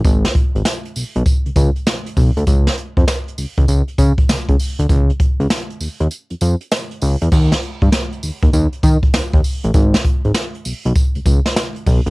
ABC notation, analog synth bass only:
X:1
M:4/4
L:1/16
Q:"Swing 16ths" 1/4=99
K:G#dor
V:1 name="Analog synth bass" clef=bass
G,,,2 z G,,, z2 B,,, B,,, z C,, C,, z3 B,,, =D,, | C,,2 z E,, z2 C,, C,, C,, z C, z C,, C,, z =D,, | C,,2 z C,, z2 D,, D,, z E,, E,, z3 C,, =E,, | D,,2 z =G,, z2 D,, D,, D,, z D, z D,, D,, z =A,,, |
G,,,2 z G,,, z2 B,,, B,,, z C,, C,, z3 B,,, =D,, |]